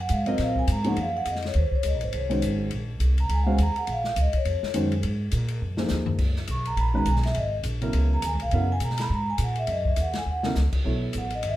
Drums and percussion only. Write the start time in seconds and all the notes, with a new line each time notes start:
0.09 hi-hat pedal, ride
0.26 ride
0.38 snare, ride
0.56 kick
0.68 hi-hat pedal, ride
0.84 ride
0.96 ride
1.25 hi-hat pedal, ride
1.35 snare
1.42 snare, ride
1.54 ride
1.72 kick
1.83 hi-hat pedal, ride
2.01 ride
2.13 ride
2.31 ride
2.42 hi-hat pedal, ride
2.71 ride
3.00 hi-hat pedal, ride
3.18 ride
3.29 ride
3.58 hi-hat pedal, ride
3.76 ride
3.87 ride
4.04 snare
4.16 hi-hat pedal, ride
4.33 kick, ride
4.45 ride
4.63 snare
4.74 hi-hat pedal, ride
4.92 ride
5.03 ride
5.32 hi-hat pedal, ride
5.48 ride
5.77 snare
5.88 snare, hi-hat pedal
6.06 floor tom
6.19 kick, crash
6.36 snare
6.47 hi-hat pedal, ride
6.65 ride
6.77 ride
7.06 hi-hat pedal, ride
7.16 snare
7.23 snare, ride
7.35 ride
7.63 hi-hat pedal, ride
7.82 ride
7.93 ride
8.22 hi-hat pedal, ride
8.40 ride
8.51 ride
8.80 hi-hat pedal, ride
8.90 snare
8.98 snare, ride
9.38 hi-hat pedal, ride
9.56 ride
9.67 ride
9.85 kick
9.96 hi-hat pedal, ride
10.13 snare, ride
10.43 snare
10.55 snare, hi-hat pedal
10.73 kick, crash
11.13 hi-hat pedal, ride
11.30 ride
11.43 ride